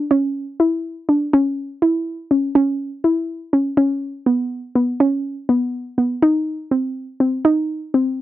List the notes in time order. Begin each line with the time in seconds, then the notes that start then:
0.11 C#4
0.60 E4
1.09 D4
1.33 C#4
1.82 E4
2.31 C#4
2.55 C#4
3.04 E4
3.53 C#4
3.77 C#4
4.26 B3
4.75 B3
5.00 C#4
5.49 B3
5.98 B3
6.22 D#4
6.71 C4
7.20 C4
7.45 D#4
7.94 C4